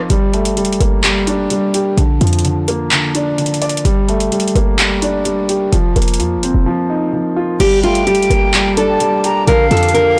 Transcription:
Already playing: F3 A#3 C4 D#4 F4
0.10 G1 G3, closed hi-hat
0.34 A3, closed hi-hat
0.45 closed hi-hat
0.57 F1 G3, closed hi-hat
0.65 closed hi-hat
0.73 closed hi-hat
0.80 G1 A#3, closed hi-hat
1.04 G3, clap, closed hi-hat
1.27 D4, closed hi-hat
1.50 G3, closed hi-hat
1.74 G4, closed hi-hat
1.97 A#1 D3, closed hi-hat
2.21 F2 F3, closed hi-hat
2.27 closed hi-hat
2.33 closed hi-hat
2.39 closed hi-hat
2.44 D3, closed hi-hat
2.68 A#3, closed hi-hat
2.91 D3, clap, closed hi-hat
3.15 D4, closed hi-hat
3.38 D3, closed hi-hat
3.46 closed hi-hat
3.54 closed hi-hat
3.62 D5, closed hi-hat
3.69 closed hi-hat
3.77 closed hi-hat
3.85 G1 G3, closed hi-hat
4.09 A3, closed hi-hat
4.20 closed hi-hat
4.32 G3, closed hi-hat
4.40 closed hi-hat
4.48 closed hi-hat
4.55 G1 A#3, closed hi-hat
4.79 G3, clap, closed hi-hat
5.02 D4, closed hi-hat
5.25 G3, closed hi-hat
5.49 G4, closed hi-hat
5.72 F1 F3, closed hi-hat
5.96 F1 A#3, closed hi-hat
6.02 closed hi-hat
6.08 closed hi-hat
6.14 closed hi-hat
6.19 F2 F3, closed hi-hat
6.37 F1
6.43 C4, closed hi-hat
6.54 F1
6.66 F3
6.90 D#4
7.13 F3
7.36 F4
7.60 G1 G3 G4 G5 A5 D6, closed hi-hat, crash
7.83 A3 F4 G5, closed hi-hat
7.95 closed hi-hat
8.06 F1 G3 G4, closed hi-hat
8.15 closed hi-hat
8.23 closed hi-hat
8.30 G1 A#3, closed hi-hat
8.54 G3, clap, closed hi-hat
8.77 D4 A4 A5, closed hi-hat
9.00 G3, closed hi-hat
9.24 G4 A#5, closed hi-hat
9.47 A#1 D3 A#4 D5 F5, closed hi-hat
9.71 F2 F3 A4, closed hi-hat
9.77 closed hi-hat
9.83 closed hi-hat
9.89 closed hi-hat
9.94 D3 A#4, closed hi-hat

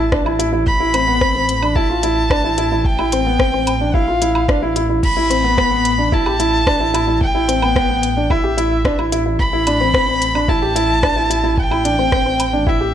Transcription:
Already playing: A1 A5
0.12 D4, kick, cross-stick
0.26 E4, low woodblock
0.39 E4, closed hi-hat
0.53 E4
0.66 A1 B5, kick
0.80 E4
0.94 C4, closed hi-hat, low woodblock
1.08 B3
1.21 C4, kick, cross-stick
1.35 C4
1.49 closed hi-hat
1.62 D4, low woodblock
1.76 E4 A5, kick
1.90 F4
2.03 E4, closed hi-hat
2.30 D4, kick, cross-stick, low woodblock
2.44 E4
2.58 E4, closed hi-hat
2.72 E4
2.85 G5, kick
2.99 E4, low woodblock
3.12 C4, closed hi-hat
3.26 B3
3.39 C4, kick, cross-stick
3.54 C4
3.67 closed hi-hat, low woodblock
3.81 D4
3.94 E4 F5, kick
4.08 F4
4.22 E4, closed hi-hat
4.35 low woodblock
4.48 D4, kick, cross-stick
4.62 E4
4.76 E4, closed hi-hat
4.90 E4
5.03 A1 B5, kick, crash
5.17 E4
5.30 C4, closed hi-hat
5.44 B3
5.58 B3, kick, cross-stick, low woodblock
5.71 B3
5.85 closed hi-hat
5.98 D4
6.12 E4 A5, kick
6.26 G4, low woodblock
6.40 E4, closed hi-hat
6.67 D4, kick, cross-stick
6.80 E4
6.94 E4, closed hi-hat, low woodblock
7.07 E4
7.21 G5, kick
7.35 E4
7.48 C4, closed hi-hat
7.62 B3, low woodblock
7.76 B3, kick, cross-stick
7.90 B3
8.03 closed hi-hat
8.17 D4
8.30 E4 E5, kick, low woodblock
8.44 G4
8.57 E4, closed hi-hat
8.85 D4, kick, cross-stick
8.99 E4, low woodblock
9.12 E4, closed hi-hat
9.26 E4
9.39 A1 B5, kick
9.53 E4
9.67 D4, closed hi-hat, low woodblock
9.81 C4
9.94 C4, kick, cross-stick
10.08 C4
10.22 closed hi-hat
10.35 D4, low woodblock
10.48 E4 A5, kick
10.62 G4
10.76 E4, closed hi-hat
11.03 D4, kick, cross-stick, low woodblock
11.16 E4
11.30 E4, closed hi-hat
11.44 E4
11.58 G5, kick
11.71 E4, low woodblock
11.85 D4, closed hi-hat
11.99 C4
12.12 C4, kick, cross-stick
12.26 C4
12.40 closed hi-hat, low woodblock
12.53 D4
12.67 E4 E5, kick
12.80 G4

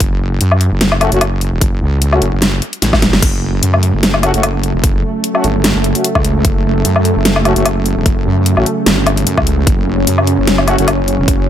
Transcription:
0.00 F#1, kick, closed hi-hat
0.41 F#2, closed hi-hat
0.52 low woodblock
0.61 closed hi-hat
0.72 F#1
0.81 snare, closed hi-hat
0.92 low woodblock
1.01 A3 C#4 F#4, closed hi-hat, low woodblock
1.12 F#1 A3 C#4 F#4, closed hi-hat
1.21 closed hi-hat, low woodblock
1.41 closed hi-hat
1.52 E1
1.61 F#1, kick, closed hi-hat
1.81 C#2
2.02 closed hi-hat
2.12 A3 C#4 F#4, low woodblock
2.22 F#1, closed hi-hat
2.33 F#1
2.42 snare, closed hi-hat
2.62 closed hi-hat
2.73 closed hi-hat
2.82 A1, snare, closed hi-hat
2.93 kick, snare, low woodblock
3.02 snare, closed hi-hat
3.13 F#1, snare
3.22 F#1 C#3 F#3 A3, kick, closed hi-hat, crash
3.63 F#2, closed hi-hat
3.74 low woodblock
3.83 closed hi-hat
3.94 F#1
4.03 snare, closed hi-hat
4.14 low woodblock
4.23 A3 C#4 F#4, closed hi-hat, low woodblock
4.34 F#1 A3 C#4 F#4, closed hi-hat
4.43 closed hi-hat, low woodblock
4.64 closed hi-hat
4.74 E1
4.84 F#1, kick, closed hi-hat
5.24 closed hi-hat
5.35 A3 C#4 F#4, low woodblock
5.44 G1, closed hi-hat
5.64 snare, closed hi-hat
5.75 F#1
5.84 closed hi-hat
5.95 A3 C#4 F#4, closed hi-hat
6.04 closed hi-hat
6.15 C#2, kick, low woodblock
6.25 closed hi-hat
6.45 F#1, kick, closed hi-hat
6.85 F#2, closed hi-hat
6.96 low woodblock
7.05 closed hi-hat
7.16 F#1
7.25 snare, closed hi-hat
7.36 low woodblock
7.45 A3 C#4 F#4, closed hi-hat, low woodblock
7.56 F#1 A3 C#4 F#4, closed hi-hat
7.66 closed hi-hat, low woodblock
7.86 closed hi-hat
7.96 E1
8.06 F#1, kick, closed hi-hat
8.26 F#2
8.46 closed hi-hat
8.57 A1 A3 C#4 F#4, low woodblock
8.66 closed hi-hat
8.86 G1, snare, closed hi-hat
9.07 closed hi-hat, low woodblock
9.17 closed hi-hat
9.27 F#2, closed hi-hat
9.38 C#2, kick, low woodblock
9.47 closed hi-hat
9.67 F#1 C#4, kick, closed hi-hat
10.07 F#2, closed hi-hat
10.18 low woodblock
10.27 closed hi-hat
10.38 F#1
10.47 snare, closed hi-hat
10.58 low woodblock
10.68 A3 C#4 F#4, closed hi-hat, low woodblock
10.78 F#1 A3 C#4 F#4, closed hi-hat
10.88 closed hi-hat, low woodblock
11.08 closed hi-hat
11.19 E1
11.28 F#1, kick, closed hi-hat

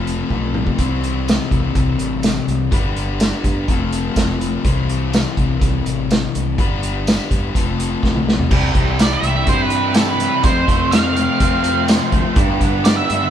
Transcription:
Already playing: F1 F3 A3 C4 F4 A4
0.07 closed hi-hat
0.30 B1, kick
0.54 mid tom
0.67 kick
0.78 C2 C3 E3 G3 C4 E4 C5, kick, closed hi-hat
1.04 closed hi-hat
1.28 snare, closed hi-hat, tambourine
1.51 C2, kick, closed hi-hat
1.75 C2, kick, closed hi-hat
1.99 A1, closed hi-hat
2.23 snare, closed hi-hat, tambourine
2.48 C2, closed hi-hat
2.71 G1 G3 B3 D4 B4, kick, closed hi-hat
2.97 closed hi-hat
3.20 snare, closed hi-hat, tambourine
3.44 G2, kick, closed hi-hat
3.68 F1 F3 A3 C4 F4 A4, kick, closed hi-hat
3.93 closed hi-hat
4.16 F1, kick, snare, closed hi-hat, tambourine
4.41 closed hi-hat
4.64 C2 C3 E3 G3 C4 E4 C5, kick, closed hi-hat
4.89 closed hi-hat
5.13 snare, closed hi-hat, tambourine
5.37 C2, kick, closed hi-hat
5.61 C2, kick, closed hi-hat
5.86 A1, closed hi-hat
6.11 snare, closed hi-hat, tambourine
6.35 C2, closed hi-hat
6.58 G1 G3 B3 D4 B4, kick, closed hi-hat
6.83 closed hi-hat
7.07 snare, closed hi-hat, tambourine
7.31 G2, kick, closed hi-hat
7.54 F1 F3 A3 C4 F4 A4, kick, closed hi-hat
7.80 closed hi-hat
8.03 B1, kick, snare
8.16 mid tom
8.29 snare
8.39 floor tom
8.50 C2 C3 E3 G3 C4 E4 E5, kick, crash
8.75 C2 G3, kick, closed hi-hat
8.99 E3 D5, snare, closed hi-hat, tambourine
9.13 E5
9.23 C2 C4, closed hi-hat
9.46 G2 C3 E3 G3 C4 E4 C5, kick, closed hi-hat
9.62 B4
9.70 C4, closed hi-hat
9.94 E3 G4 A4, snare, closed hi-hat, tambourine
10.09 B4
10.19 G3, closed hi-hat
10.42 F2 C3 F3 A3 C4 F4 C5, kick, closed hi-hat
10.68 F2 A3, kick, closed hi-hat
10.91 F3 F5, snare, closed hi-hat, tambourine
11.16 C4, closed hi-hat
11.40 F2 C3 F3 A3 C4 F4, kick, closed hi-hat
11.64 C4, closed hi-hat
11.88 F3, snare, closed hi-hat, tambourine
12.12 D2 A3, kick, closed hi-hat
12.34 G2 D3 G3 B3 D4 G4 B4, kick, closed hi-hat, shaker
12.61 G2 B3, kick, closed hi-hat, shaker
12.84 G3 D5, snare, closed hi-hat, tambourine, shaker
12.97 E5
13.09 G2 D4, closed hi-hat, shaker

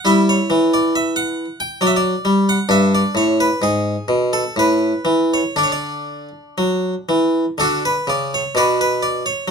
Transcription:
0.05 G3 E4 E5
0.29 C#5
0.50 E3
0.74 D5
0.96 E5
1.16 F#5
1.60 G5
1.81 F#3 D5
1.87 E5
1.96 D5
2.25 G3
2.49 F#5
2.69 G2 D4 E5
2.95 D5
3.15 A2 C#5
3.40 B4
3.62 G#2 G#4
4.08 B2
4.33 A4
4.56 A2 B4
5.05 E3
5.34 C#5
5.56 D3 D4 D5
5.63 C#5
5.72 D5
6.58 F#3
7.09 E3
7.58 D3 D4 F#4 A4
7.85 B4
8.07 C#3 D5
8.34 C#5
8.55 B2 F#4 B4 D5
8.81 B4
9.03 D5
9.26 C#5

